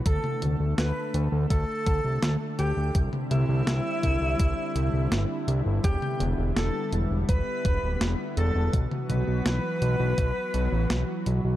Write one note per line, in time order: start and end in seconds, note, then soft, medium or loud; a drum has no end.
0.06 0.20 D2 loud
0.06 8.69 D3 medium
0.06 2.92 A3 medium
0.06 0.46 A4 loud
0.06 2.92 A4 medium
0.06 0.46 A5 loud
0.06 kick loud
0.06 closed hi-hat medium
0.24 mid tom medium
0.42 0.56 D2 loud
0.42 closed hi-hat medium
0.42 mid tom medium
0.60 0.74 D2 medium
0.78 0.92 D2 loud
0.78 1.18 B4 loud
0.78 1.18 B5 medium
0.78 snare loud
0.78 closed hi-hat loud
1.14 1.28 D2 medium
1.14 closed hi-hat medium
1.32 1.47 D2 medium
1.50 1.65 D2 loud
1.50 2.44 A4 loud
1.50 2.44 A5 loud
1.50 kick loud
1.50 closed hi-hat medium
1.86 2.01 D2 loud
1.86 kick loud
1.86 closed hi-hat medium
2.05 2.19 C2 medium
2.23 2.37 D2 loud
2.23 snare loud
2.23 closed hi-hat loud
2.59 2.73 D2 loud
2.59 2.99 G4 medium
2.59 2.99 G5 medium
2.59 closed hi-hat medium
2.77 2.91 D2 medium
2.94 3.09 C2 loud
2.94 5.81 G3 medium
2.94 5.81 C4 medium
2.94 8.69 E4 medium
2.94 kick loud
2.94 closed hi-hat medium
3.13 mid tom medium
3.31 3.45 C2 medium
3.31 5.70 E4 loud
3.31 5.70 E5 loud
3.31 closed hi-hat medium
3.31 mid tom medium
3.49 3.63 C2 medium
3.67 3.81 C2 loud
3.67 snare loud
3.67 closed hi-hat medium
4.03 4.18 C2 medium
4.03 kick medium
4.03 closed hi-hat medium
4.21 4.36 C2 medium
4.39 4.54 C2 loud
4.39 kick loud
4.39 closed hi-hat loud
4.75 4.90 C2 medium
4.75 closed hi-hat medium
4.94 5.08 C2 medium
5.12 5.26 G1 loud
5.12 snare loud
5.12 closed hi-hat loud
5.48 5.62 C2 medium
5.48 closed hi-hat medium
5.66 5.80 G1 medium
5.84 5.98 E1 loud
5.84 8.71 G3 medium
5.84 11.56 B3 medium
5.84 6.24 G4 loud
5.84 6.24 G5 loud
5.84 kick loud
5.84 closed hi-hat medium
6.02 mid tom medium
6.20 6.34 E1 loud
6.20 closed hi-hat medium
6.20 mid tom medium
6.38 6.52 E1 medium
6.56 6.71 E1 loud
6.56 6.97 A4 medium
6.56 6.97 A5 loud
6.56 snare loud
6.56 closed hi-hat medium
6.93 7.07 E1 medium
6.93 closed hi-hat medium
7.11 7.25 E1 medium
7.29 7.43 E1 loud
7.29 8.23 B4 loud
7.29 8.23 B5 loud
7.29 kick loud
7.29 closed hi-hat medium
7.65 7.79 E1 medium
7.65 kick loud
7.65 closed hi-hat medium
7.83 7.97 D1 medium
8.01 8.15 E1 loud
8.01 snare loud
8.01 closed hi-hat medium
8.37 8.51 E1 loud
8.37 8.77 A4 loud
8.37 8.77 A5 medium
8.37 closed hi-hat medium
8.55 8.70 E1 medium
8.73 8.88 B1 loud
8.73 11.56 E3 medium
8.73 11.56 F#3 medium
8.73 11.56 F#4 medium
8.73 kick loud
8.73 closed hi-hat medium
8.91 mid tom medium
9.10 9.24 B1 loud
9.10 11.48 B4 loud
9.10 11.48 B5 loud
9.10 closed hi-hat medium
9.10 mid tom medium
9.28 9.42 B1 medium
9.46 9.60 B1 loud
9.46 snare loud
9.46 closed hi-hat medium
9.82 9.96 B1 medium
9.82 closed hi-hat medium
10.00 10.14 B1 medium
10.18 10.32 B1 loud
10.18 kick loud
10.18 closed hi-hat medium
10.54 10.68 B1 medium
10.54 closed hi-hat medium
10.72 10.86 A1 medium
10.90 11.04 B1 loud
10.90 snare loud
10.90 closed hi-hat medium
11.26 11.41 B1 medium
11.26 closed hi-hat medium
11.45 11.56 B1 medium